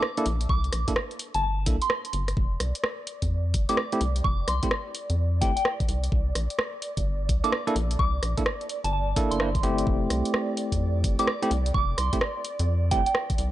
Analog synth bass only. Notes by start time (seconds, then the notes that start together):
0.26 A#1
0.49 C2
0.73 A#1
1.35 G1
1.67 C2
2.13 G1
2.37 F1
2.60 C2
3.22 F2
3.54 F1
4.01 C2
4.24 F1
4.48 C2
5.10 F2
5.42 F1
5.88 C2
6.12 C2
6.35 A#1
6.97 G1
7.29 C2
7.76 A#1
7.99 C2
8.23 A#1
8.84 G1
9.31 G1
9.63 G1
9.87 F1
10.10 C2
10.72 F2
11.04 F1
11.51 C2
11.74 F1
11.98 C2
12.60 F2
12.92 F1
13.38 C2